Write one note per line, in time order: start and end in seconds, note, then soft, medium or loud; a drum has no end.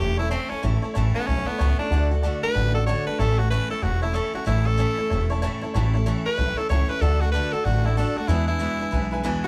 0.00 0.35 E1 medium
0.00 0.19 E3 medium
0.00 0.19 A3 medium
0.00 0.19 C#4 medium
0.00 0.18 E4 medium
0.00 0.18 G4 loud
0.00 0.10 C#5 medium
0.00 0.11 E5 medium
0.00 0.11 A5 medium
0.17 0.31 C#4 medium
0.17 0.30 E4 loud
0.17 0.31 E4 medium
0.17 0.26 C#5 loud
0.17 0.26 E5 medium
0.17 0.26 A5 loud
0.22 0.30 A3 soft
0.30 0.51 A2 medium
0.30 0.51 E3 medium
0.30 0.51 A3 medium
0.30 0.51 C4 loud
0.30 0.51 C#4 loud
0.30 0.49 E4 loud
0.30 0.43 C#5 loud
0.30 0.43 E5 loud
0.30 0.43 A5 loud
0.49 0.62 A3 soft
0.49 0.62 C#4 loud
0.49 0.63 C#4 medium
0.49 0.63 E4 medium
0.49 0.58 C#5 medium
0.49 0.58 E5 medium
0.49 0.59 A5 medium
0.49 muted upright bass stroke medium
0.62 0.77 A1 medium
0.62 0.83 A2 medium
0.62 0.83 E3 medium
0.62 0.83 A3 medium
0.62 0.83 C#4 medium
0.62 0.81 E4 medium
0.62 0.75 C#5 loud
0.62 0.75 E5 medium
0.62 0.75 A5 loud
0.82 0.95 A3 medium
0.82 0.96 C#4 medium
0.82 0.95 E4 medium
0.82 0.90 C#5 medium
0.82 0.90 E5 medium
0.82 0.91 A5 loud
0.94 1.13 A1 medium
0.94 1.15 A2 loud
0.94 1.16 E3 medium
0.94 1.16 A3 loud
0.94 1.15 C#4 loud
0.94 1.14 E4 loud
0.94 1.07 C#5 loud
0.94 1.07 E5 loud
0.94 1.07 A5 loud
1.14 1.28 A3 soft
1.14 1.28 B3 loud
1.14 1.28 C#4 medium
1.14 1.27 E4 medium
1.14 1.22 C#5 medium
1.14 1.22 E5 medium
1.14 1.23 A5 medium
1.26 1.45 B1 medium
1.26 1.47 E3 medium
1.26 1.48 A3 medium
1.26 1.48 C#4 loud
1.26 1.48 C#4 medium
1.26 1.39 C#5 medium
1.26 1.39 E5 medium
1.26 1.40 A5 medium
1.32 1.46 E4 medium
1.46 1.78 B3 loud
1.46 1.60 C#4 soft
1.46 1.60 E4 medium
1.46 1.54 C#5 loud
1.46 1.54 E5 loud
1.46 1.55 A5 loud
1.46 muted upright bass stroke medium
1.51 1.60 A3 soft
1.59 1.77 C#2 medium
1.59 1.79 A2 medium
1.59 1.80 E3 medium
1.59 1.80 A3 loud
1.59 1.80 C#4 loud
1.59 1.78 E4 medium
1.59 1.71 C#5 loud
1.59 1.71 E5 medium
1.59 1.72 A5 loud
1.78 1.92 C#4 medium
1.78 2.10 D4 loud
1.78 1.91 E4 medium
1.78 1.86 C#5 medium
1.78 1.87 E5 medium
1.78 1.87 A5 medium
1.78 muted upright bass stroke medium
1.82 1.91 A3 medium
1.90 2.27 D2 loud
1.90 2.12 D3 medium
1.90 2.12 A3 medium
1.90 2.12 D4 loud
1.90 2.10 F#4 medium
1.90 2.03 D5 loud
1.90 2.03 F#5 medium
1.90 2.04 A5 loud
2.10 2.24 D4 soft
2.10 2.24 F#4 medium
2.10 2.18 D5 medium
2.10 2.19 F#5 medium
2.10 2.19 A5 medium
2.15 2.23 A3 soft
2.22 2.43 D3 loud
2.22 2.44 A3 medium
2.22 2.44 D4 loud
2.22 2.41 F#4 loud
2.22 2.35 D5 loud
2.22 2.35 F#5 medium
2.22 2.35 A5 loud
2.42 2.56 D4 soft
2.42 2.55 F#4 medium
2.42 2.74 B4 loud
2.42 2.50 D5 medium
2.42 2.50 F#5 medium
2.42 2.51 A5 medium
2.42 muted upright bass stroke medium
2.46 2.56 A3 soft
2.54 2.92 A1 loud
2.54 2.75 D3 medium
2.54 2.76 A3 medium
2.54 2.76 D4 medium
2.54 2.67 D5 medium
2.54 2.67 F#5 medium
2.54 2.67 A5 medium
2.58 2.75 F#4 medium
2.74 2.88 D4 soft
2.74 2.88 F#4 medium
2.74 2.86 A4 loud
2.74 2.82 D5 loud
2.74 2.82 F#5 loud
2.74 2.82 A5 loud
2.79 2.87 A3 soft
2.86 3.07 D3 medium
2.86 3.08 A3 medium
2.86 3.08 D4 loud
2.86 3.05 F#4 loud
2.86 3.06 C#5 loud
2.86 2.99 D5 loud
2.86 2.99 F#5 loud
2.86 2.99 A5 loud
3.06 3.20 D4 medium
3.06 3.19 F#4 medium
3.06 3.21 B4 loud
3.06 3.14 D5 medium
3.06 3.14 F#5 medium
3.06 3.15 A5 medium
3.06 muted upright bass stroke medium
3.11 3.20 A3 soft
3.19 3.55 A1 loud
3.19 3.39 A2 medium
3.19 3.40 E3 medium
3.19 3.40 A3 medium
3.19 3.39 C#4 medium
3.19 3.38 E4 medium
3.19 3.40 A4 loud
3.19 3.31 C#5 loud
3.19 3.31 E5 medium
3.19 3.32 A5 loud
3.38 3.52 C#4 medium
3.38 3.51 E4 medium
3.38 3.50 F#4 loud
3.38 3.46 C#5 medium
3.38 3.46 E5 medium
3.38 3.47 A5 medium
3.42 3.51 A3 soft
3.50 3.71 A2 medium
3.50 3.71 E3 loud
3.50 3.72 A3 medium
3.50 3.71 C#4 medium
3.50 3.69 E4 loud
3.50 3.70 B4 loud
3.50 3.63 C#5 medium
3.50 3.63 E5 medium
3.50 3.64 A5 medium
3.70 3.82 A3 medium
3.70 3.83 C#4 medium
3.70 3.83 E4 medium
3.70 3.84 A4 loud
3.70 3.78 C#5 medium
3.70 3.78 E5 medium
3.70 3.79 A5 medium
3.70 muted upright bass stroke medium
3.82 4.19 E1 medium
3.82 4.03 E3 medium
3.82 4.03 A3 medium
3.82 4.02 C#4 medium
3.82 4.00 E4 medium
3.82 4.02 F#4 loud
3.82 3.95 C#5 medium
3.82 3.95 E5 medium
3.82 3.95 A5 medium
4.02 4.14 A3 soft
4.02 4.14 C#4 medium
4.02 4.15 E4 medium
4.02 4.16 E4 loud
4.02 4.10 C#5 loud
4.02 4.10 E5 loud
4.02 4.11 A5 loud
4.14 4.34 A2 medium
4.14 4.35 E3 medium
4.14 4.35 A3 loud
4.14 4.34 C#4 medium
4.14 4.32 E4 loud
4.14 4.34 A4 medium
4.14 4.27 C#5 loud
4.14 4.27 E5 loud
4.14 4.27 A5 loud
4.33 4.45 A3 soft
4.33 4.46 C#4 medium
4.33 4.46 E4 medium
4.33 4.46 F#4 medium
4.33 4.42 C#5 medium
4.33 4.43 E5 medium
4.33 4.43 A5 medium
4.33 muted upright bass stroke medium
4.45 4.83 A1 medium
4.45 4.66 A2 medium
4.45 4.66 E3 medium
4.45 4.66 A3 medium
4.45 4.65 C#4 medium
4.45 4.68 E4 loud
4.45 4.63 E4 loud
4.45 4.59 C#5 medium
4.45 4.59 E5 medium
4.45 4.60 A5 loud
4.64 4.78 A3 soft
4.64 4.78 C#4 medium
4.64 4.78 E4 medium
4.64 5.29 A4 loud
4.64 4.74 C#5 medium
4.64 4.74 E5 medium
4.64 4.75 A5 medium
4.77 4.98 A2 medium
4.77 4.98 E3 medium
4.77 4.99 A3 medium
4.77 4.98 C#4 loud
4.77 4.96 E4 loud
4.77 4.91 C#5 medium
4.77 4.91 E5 medium
4.77 4.91 A5 medium
4.97 5.10 A3 soft
4.97 5.11 C#4 medium
4.97 5.10 E4 medium
4.97 5.06 C#5 medium
4.97 5.06 E5 medium
4.97 5.07 A5 medium
4.97 muted upright bass stroke medium
5.10 5.47 E1 medium
5.10 5.30 E3 medium
5.10 5.31 A3 medium
5.10 5.30 C#4 medium
5.10 5.28 E4 medium
5.10 5.22 C#5 medium
5.10 5.23 E5 medium
5.10 5.23 A5 loud
5.30 5.42 A3 medium
5.30 5.43 C#4 medium
5.30 5.42 E4 medium
5.30 5.38 C#5 loud
5.30 5.38 E5 loud
5.30 5.38 A5 loud
5.42 5.62 A2 loud
5.42 5.63 E3 loud
5.42 5.63 A3 loud
5.42 5.62 C#4 loud
5.42 5.60 E4 loud
5.42 5.54 C#5 loud
5.42 5.55 E5 loud
5.42 5.55 A5 loud
5.61 5.75 A3 medium
5.61 5.75 C#4 medium
5.61 5.74 E4 medium
5.61 5.70 C#5 medium
5.61 5.70 E5 medium
5.61 5.70 A5 loud
5.61 muted upright bass stroke medium
5.74 6.11 A1 loud
5.74 5.94 A2 medium
5.74 5.95 E3 medium
5.74 5.95 A3 loud
5.74 5.94 C#4 loud
5.74 5.92 E4 loud
5.74 5.86 C#5 loud
5.74 5.87 E5 loud
5.74 5.87 A5 loud
5.93 6.05 A3 medium
5.93 6.06 C#4 medium
5.93 6.06 E4 medium
5.93 6.02 C#5 loud
5.93 6.02 E5 medium
5.93 6.02 A5 loud
6.06 6.26 A2 loud
6.06 6.26 E3 loud
6.06 6.26 A3 loud
6.06 6.26 C#4 loud
6.06 6.24 E4 loud
6.06 6.18 C#5 medium
6.06 6.19 E5 medium
6.06 6.19 A5 loud
6.25 6.38 A3 soft
6.25 6.38 C#4 medium
6.25 6.38 E4 medium
6.25 6.59 B4 loud
6.25 6.34 C#5 medium
6.25 6.34 E5 medium
6.25 6.34 A5 medium
6.25 muted upright bass stroke medium
6.37 6.55 B1 medium
6.37 6.58 E3 medium
6.37 6.58 A3 medium
6.37 6.58 C#4 medium
6.37 6.56 E4 medium
6.37 6.50 C#5 medium
6.37 6.50 E5 medium
6.37 6.51 A5 medium
6.57 6.70 C#4 medium
6.57 6.70 E4 medium
6.57 6.69 A4 loud
6.57 6.65 C#5 loud
6.57 6.65 E5 medium
6.57 6.66 A5 loud
6.57 muted upright bass stroke medium
6.61 6.70 A3 soft
6.69 6.87 C#2 medium
6.69 6.90 A2 medium
6.69 6.90 E3 medium
6.69 6.90 A3 medium
6.69 6.89 C#4 medium
6.69 6.87 E4 loud
6.69 6.91 C#5 loud
6.69 6.82 C#5 loud
6.69 6.82 E5 loud
6.69 6.83 A5 loud
6.89 7.01 A3 soft
6.89 7.03 C#4 medium
6.89 7.02 E4 medium
6.89 7.03 B4 loud
6.89 6.97 C#5 medium
6.89 6.97 E5 medium
6.89 6.98 A5 medium
7.01 7.38 D2 loud
7.01 7.22 D3 medium
7.01 7.22 A3 medium
7.01 7.22 D4 medium
7.01 7.20 F#4 medium
7.01 7.22 A4 loud
7.01 7.14 D5 loud
7.01 7.14 F#5 medium
7.01 7.14 A5 loud
7.20 7.35 D4 medium
7.20 7.31 F#4 loud
7.20 7.34 F#4 medium
7.20 7.29 D5 medium
7.20 7.29 F#5 medium
7.20 7.29 A5 medium
7.24 7.34 A3 medium
7.32 7.54 D3 medium
7.32 7.54 A3 medium
7.32 7.54 D4 loud
7.32 7.54 B4 loud
7.32 7.45 D5 medium
7.32 7.46 F#5 medium
7.32 7.46 A5 medium
7.37 7.52 F#4 loud
7.52 7.66 D4 medium
7.52 7.66 F#4 medium
7.52 7.66 A4 loud
7.52 7.61 D5 medium
7.52 7.61 F#5 medium
7.52 7.61 A5 medium
7.52 muted upright bass stroke medium
7.56 7.65 A3 soft
7.64 8.02 A1 medium
7.64 7.85 D3 medium
7.64 7.86 A3 medium
7.64 7.86 D4 medium
7.64 7.87 F#4 loud
7.64 7.77 D5 medium
7.64 7.78 F#5 medium
7.64 7.78 A5 medium
7.69 7.84 F#4 medium
7.84 7.97 A3 soft
7.84 7.97 D4 medium
7.84 7.97 E4 medium
7.84 7.98 F#4 medium
7.84 7.92 D5 loud
7.84 7.93 F#5 medium
7.84 7.93 A5 loud
7.96 8.17 D3 medium
7.96 8.18 A3 loud
7.96 8.17 D4 loud
7.96 8.15 F#4 loud
7.96 8.19 A4 medium
7.96 8.09 D5 loud
7.96 8.09 F#5 loud
7.96 8.10 A5 loud
8.16 8.29 A3 soft
8.16 8.29 D4 medium
8.16 8.29 F#4 medium
8.16 8.30 F#4 loud
8.16 8.24 D5 medium
8.16 8.24 F#5 medium
8.16 8.25 A5 medium
8.16 muted upright bass stroke medium
8.28 8.49 E2 medium
8.28 8.65 E2 loud
8.28 8.49 B2 medium
8.28 8.49 E3 loud
8.28 8.49 G#3 loud
8.28 8.48 D4 medium
8.28 8.47 E4 loud
8.28 8.46 E4 medium
8.28 8.41 B4 loud
8.28 8.41 E5 medium
8.28 8.42 G#5 loud
8.48 8.59 E3 soft
8.48 8.59 G#3 soft
8.48 8.60 D4 medium
8.48 8.60 E4 medium
8.48 9.10 E4 loud
8.48 8.56 B4 medium
8.48 8.56 E5 medium
8.48 8.57 G#5 medium
8.59 8.80 E2 medium
8.59 8.80 B2 medium
8.59 8.81 E3 medium
8.59 8.80 G#3 medium
8.59 8.79 D4 medium
8.59 8.78 E4 medium
8.59 8.73 B4 medium
8.59 8.73 E5 medium
8.59 8.73 G#5 medium
8.79 8.90 E3 soft
8.79 8.91 G#3 medium
8.79 8.92 D4 medium
8.79 8.92 E4 medium
8.79 8.88 B4 medium
8.79 8.89 E5 medium
8.79 8.89 G#5 medium
8.79 muted upright bass stroke medium
8.91 9.29 B1 medium
8.91 9.12 E3 medium
8.91 9.13 G#3 medium
8.91 9.11 D4 medium
8.91 9.10 E4 medium
8.91 9.05 B4 loud
8.91 9.05 E5 medium
8.91 9.05 G#5 loud
9.11 9.23 E3 medium
9.11 9.23 G#3 medium
9.11 9.24 D4 medium
9.11 9.24 E4 medium
9.11 9.20 B4 loud
9.11 9.20 E5 loud
9.11 9.21 G#5 loud
9.23 9.44 E2 loud
9.23 9.44 B2 loud
9.23 9.45 E3 loud
9.23 9.45 G#3 loud
9.23 9.44 D4 loud
9.23 9.43 E4 loud
9.23 9.37 B4 loud
9.23 9.37 E5 loud
9.23 9.37 G#5 loud
9.44 9.48 E4 medium
9.44 9.48 F#4 loud
9.44 9.48 B4 medium
9.44 9.48 E5 medium
9.44 muted upright bass stroke medium